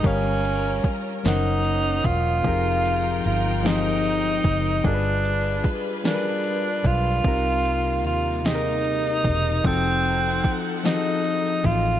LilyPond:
<<
  \new Staff \with { instrumentName = "Reed electric piano" } { \time 6/8 \key f \minor \tempo 4. = 50 <g g' bes' des'' f''>4 r8 <ges des' bes' c'' ges''>4 r8 | <f c' ees' g' aes' bes'>4 r8 <f c' ees' g' aes' c''>4 r8 | <g d' f' aes' bes' b'>4 r8 <g d' f' aes' bes' b'>4 r8 | <c c' ees' g' bes'>4 r8 <c c' ees' g' aes' bes'>4 r8 |
<f c' ees' ges' a'>4 r8 <f c' ees' ges' aes' a'>4 r8 | }
  \new Staff \with { instrumentName = "Tenor saxophone" } { \time 6/8 \key f \minor des'4 r8 ees'4 f'8~ | f'4 f'8 ees'4. | d'4 r8 d'4 f'8~ | f'4 f'8 ees'4. |
c'4 r8 ees'4 f'8 | }
  \new Staff \with { instrumentName = "String section" } { \time 6/8 \key f \minor <g des' f' bes'>4. <ges bes des'>4. | <f aes ees' bes' g''>2. | <g f' aes' b'>2. | <c g bes ees'>2. |
<f a' ges''>2. | }
  \new Staff \with { instrumentName = "Fingered electric bass" } { \clef bass \time 6/8 \key f \minor g,,4 r8 ges,,4 fes,,8 | f,,4 g,,4. ges,,8 | g,,4 r4. b,,8 | c,4 ees,4. fes,,8 |
f,,4 r4. a,,8 | }
  \new DrumStaff \with { instrumentName = "Drums" } \drummode { \time 6/8 <hh bd>8 hh8 <hh bd>8 <hh sn>8 hh8 <hh bd>8 | <hh bd>8 hh8 hh8 <hh sn>8 hh8 <hh bd>8 | <hh bd>8 hh8 <hh bd>8 <hh sn>8 hh8 <hh bd>8 | <hh bd>8 hh8 hh8 <hh sn>8 hh8 <hh bd>8 |
<hh bd>8 hh8 <hh bd>8 <hh sn>8 hh8 <hh bd>8 | }
>>